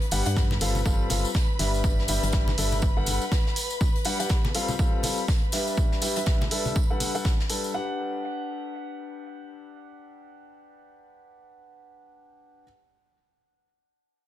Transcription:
Already playing: B4 B5
0.02 closed hi-hat
0.11 G1 G3 D4 G4 B4 F#5, open hi-hat, tambourine
0.26 G2 G3 D4 G4 B4 F#5, closed hi-hat, tambourine
0.36 kick, snare, tambourine
0.51 snare, high conga
0.61 G1 G3 C4 F4 A4 F5, open hi-hat, tambourine
0.75 tambourine, high conga
0.86 G1 G3 C4 F4 A4 F5, kick, tambourine
1.10 G1 G3 C4 F4 A4 F5, open hi-hat, tambourine, high conga
1.25 tambourine
1.34 kick, snare, tambourine
1.59 G1 G3 D4 G4 B4 E5, snare, open hi-hat, tambourine
1.74 tambourine
1.84 kick, tambourine
1.99 snare
2.08 G1 G3 D4 G4 B4 E5, open hi-hat, tambourine
2.23 G1 G3 D4 G4 B4 E5, closed hi-hat, tambourine
2.32 kick, snare, tambourine
2.48 snare, high conga
2.58 G1 G3 D4 A4 B4 E5, open hi-hat, tambourine
2.72 tambourine, high conga
2.82 kick, tambourine
2.97 G1 G3 D4 A4 B4 F#5
3.06 open hi-hat, tambourine, high conga
3.21 tambourine
3.32 kick, snare, tambourine
3.46 snare
3.56 open hi-hat, tambourine
3.70 tambourine
3.81 kick, tambourine
3.96 closed hi-hat
4.05 G3 D4 G4 B4 F#5, open hi-hat, tambourine
4.20 G3 D4 G4 B4 F#5, closed hi-hat, tambourine
4.29 kick, snare, tambourine
4.44 snare, high conga
4.55 G3 C4 F4 A4 F5, open hi-hat, tambourine
4.68 tambourine, high conga
4.79 G3 C4 F4 A4 F5, kick, tambourine
5.03 G3 C4 F4 A4 F5, open hi-hat, tambourine, high conga
5.18 tambourine
5.28 kick, snare, tambourine
5.52 G3 D4 G4 B4 E5, snare, open hi-hat, tambourine
5.67 tambourine
5.77 kick, tambourine
5.92 snare
6.02 G3 D4 G4 B4 E5, open hi-hat, tambourine
6.16 G3 D4 G4 B4 E5, closed hi-hat, tambourine
6.26 kick, snare, tambourine
6.40 snare, high conga
6.51 G3 D4 A4 B4 E5, open hi-hat, tambourine
6.66 tambourine, high conga
6.76 kick, tambourine
6.90 G3 D4 A4 B4 F#5
7.00 open hi-hat, tambourine, high conga
7.15 G3 D4 A4 B4 F#5, tambourine
7.25 kick, snare, tambourine
7.39 snare
7.50 G3 D4 A4 B4 A5, open hi-hat, tambourine
7.64 tambourine
7.74 D4 G4 B4 F#5

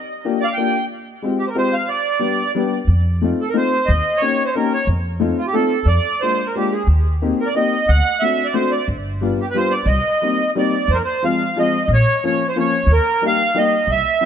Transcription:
0.25 A#3 D4 F4 G4
0.40 D5
0.44 F5
0.53 G5
0.57 A#3 D4 F4 G4
1.22 G#3 C4 F4 G4
1.39 G4
1.47 A#4 C5
1.55 G#3 C4 F4 G4 C5
1.73 F5
1.89 D5
2.19 G3 B3 D4 G4
2.55 G3 B3 D4 G4
2.87 F2
3.22 A3 C4 D#4 F4
3.41 A4
3.49 A#4
3.54 A3 C4 D#4 F4 C5
3.86 D#2 D#5
4.17 C#5
4.22 A#3 C#4 D#4 G4
4.45 C5 C#5
4.55 A#3 C#4 D#4 G4 A#4
4.74 C#5
4.87 F2
5.20 A3 C4 D#4 F4
5.38 F4
5.47 G4
5.53 A3 C4 D#4 F4 A4
5.85 F2 D5
6.21 G#3 A#3 D4 F4 C5
6.47 A#4
6.55 G#3 A#3 D4 F4 G4
6.73 G#4
6.87 D#2
7.22 A#3 C4 D#4 G4
7.40 A#4
7.46 D5
7.55 A#3 C4 D#4 G4 D#5
7.89 D2 F#5
8.20 A3 C4 D4 E5
8.24 F#4
8.45 D5
8.54 A3 C4 D4 F#4 C5
8.71 D5
8.88 G1
9.21 G3 B3 D4 F4
9.41 G4
9.50 B3 B4
9.55 G3 D4 F4 C5
9.71 D5
9.86 C2 D#5
10.22 G3 A#3 C4 D#4
10.55 G3 A#3 C4 D#4 D5
10.88 F2 C5
10.94 A#4
11.05 C5
11.22 F3 G#3 C4 F4 F5
11.57 F3 G#3 C4 F4 D#5
11.84 A#1 D#5
11.94 C#5
12.24 F3 A#3 C#4 F4 C#5
12.48 C5
12.56 F3 A#3 C#4 F4 C#5
12.87 D#2
12.92 A#4
13.21 G3 A#3 D#4 G4
13.27 F5
13.54 G3 A#3 D#4 G4 D#5
13.87 C2 E5
14.21 G3 C4 E4 G4

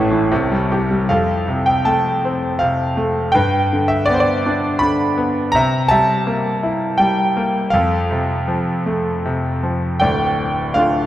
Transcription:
Already playing: A1 A2 E3 C#4 E4 C#5 E5 A5
0.11 E3
0.32 C2 C3
0.52 G3
0.72 G4
0.91 G3
1.09 F2 A4 F5
1.48 C3
1.66 G5
1.85 A3 A5
2.25 C4
2.59 C3 F5
2.97 A3
3.32 G2 B4 G5
3.73 D3
3.88 E5
4.06 B3 D5
4.14 C5
4.20 D5
4.46 D4
4.79 D3 B5
5.17 B3
5.52 C3 A#5
5.56 E5
5.88 G3 E5 A5
6.27 A#3
6.63 E4
6.98 G3 G5
7.37 A#3
7.70 F2 A4 F5
8.11 C3
8.48 F3
8.86 A3
9.25 C3
9.63 F3
10.00 D1 D2 D5 G5
10.74 A3 D4 F4 F5

